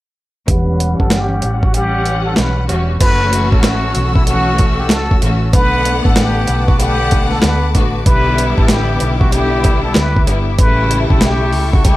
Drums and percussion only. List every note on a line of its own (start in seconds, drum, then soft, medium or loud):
0.48 kick loud
0.48 closed hi-hat loud
0.80 closed hi-hat medium
1.00 kick medium
1.10 snare loud
1.10 snare medium
1.10 closed hi-hat medium
1.42 closed hi-hat medium
1.63 kick loud
1.74 closed hi-hat medium
2.06 closed hi-hat medium
2.36 snare loud
2.36 snare medium
2.36 closed hi-hat medium
2.69 closed hi-hat medium
3.00 kick loud
3.00 closed hi-hat loud
3.00 crash loud
3.33 closed hi-hat loud
3.52 kick medium
3.63 snare loud
3.63 closed hi-hat medium
3.95 closed hi-hat medium
4.16 kick loud
4.27 closed hi-hat medium
4.58 kick loud
4.58 closed hi-hat medium
4.89 snare loud
4.89 snare medium
4.89 closed hi-hat medium
5.11 kick medium
5.22 closed hi-hat medium
5.53 kick loud
5.53 closed hi-hat loud
5.85 closed hi-hat medium
6.05 kick medium
6.16 snare loud
6.16 closed hi-hat medium
6.47 closed hi-hat medium
6.68 kick loud
6.80 closed hi-hat medium
7.11 kick loud
7.11 closed hi-hat medium
7.31 snare soft
7.42 snare loud
7.42 snare medium
7.42 closed hi-hat medium
7.75 kick medium
7.75 closed hi-hat medium
8.06 kick loud
8.06 closed hi-hat loud
8.38 closed hi-hat medium
8.58 kick medium
8.68 snare loud
8.68 closed hi-hat medium
9.00 closed hi-hat medium
9.21 kick loud
9.32 closed hi-hat medium
9.64 kick loud
9.64 closed hi-hat medium
9.94 snare loud
9.94 snare medium
9.94 closed hi-hat medium
10.16 kick medium
10.27 closed hi-hat medium
10.59 kick loud
10.59 closed hi-hat loud
10.91 closed hi-hat medium
11.10 kick medium
11.21 snare loud
11.21 closed hi-hat medium
11.53 open hi-hat medium
11.73 kick loud
11.85 kick loud
11.85 closed hi-hat medium